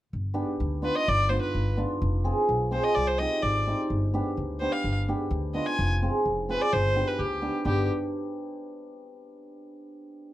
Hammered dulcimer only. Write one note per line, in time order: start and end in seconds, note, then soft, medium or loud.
0.34 0.47 B3 medium
0.34 0.47 D4 medium
0.34 0.47 G4 medium
0.82 0.95 B3 medium
0.82 0.95 D4 soft
0.82 0.95 F4 medium
1.29 1.42 B3 medium
1.29 1.43 D4 soft
1.29 1.43 F4 medium
1.77 1.89 B3 medium
1.77 1.90 D4 medium
1.77 1.90 F4 medium
2.24 2.37 C4 medium
2.24 2.37 F4 medium
2.24 2.37 G#4 medium
2.71 2.84 C4 medium
2.71 2.84 F4 medium
2.71 2.84 G#4 medium
3.20 3.31 C4 soft
3.20 3.32 D#4 soft
3.20 3.32 G4 medium
3.67 3.79 C4 medium
3.67 3.79 D#4 medium
3.67 3.79 G4 medium
4.14 4.25 B3 medium
4.14 4.26 D4 medium
4.14 4.26 G4 medium
4.61 4.73 B3 medium
4.61 4.73 D4 medium
4.61 4.73 G4 medium
5.08 5.20 B3 medium
5.08 5.20 D4 medium
5.08 5.20 G4 medium
5.54 5.66 B3 medium
5.54 5.66 D4 medium
5.54 5.67 F4 medium
6.02 6.14 C4 medium
6.02 6.14 F4 medium
6.02 6.14 G#4 medium
6.49 6.60 C4 medium
6.49 6.61 F4 medium
6.49 6.61 G#4 medium
6.95 7.07 B3 medium
6.95 7.07 D4 soft
6.95 7.07 G4 medium
7.42 7.54 B3 medium
7.42 7.54 D4 medium
7.42 7.54 G4 medium
7.65 7.87 B3 medium
7.65 7.88 D4 medium
7.65 7.87 G4 medium